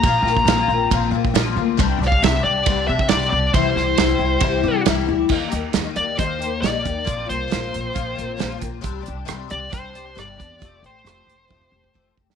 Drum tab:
CC |----------------|----------------|----------------|x---------------|
RD |b---b---b---b---|b---b---b---b---|b---b---b---b---|----------------|
HH |----------------|----------------|----------------|--x-x-x-x-x-x-x-|
SD |--o-o-------o---|--o-o-------oo--|--o-o-------o---|----o-------o---|
BD |o--o----o--o----|o--o----o--o----|o-------o-------|o-------o-----o-|

CC |----------------|----------------|----------------|
RD |----------------|----------------|----------------|
HH |x-x-x-x-x-x-x-x-|x-x-x-x-x-x-x-x-|x-x-x-x---------|
SD |----o-------o---|----r-------r---|----r----------o|
BD |o-------o-----o-|o-------o-----o-|o-------oo-oo-o-|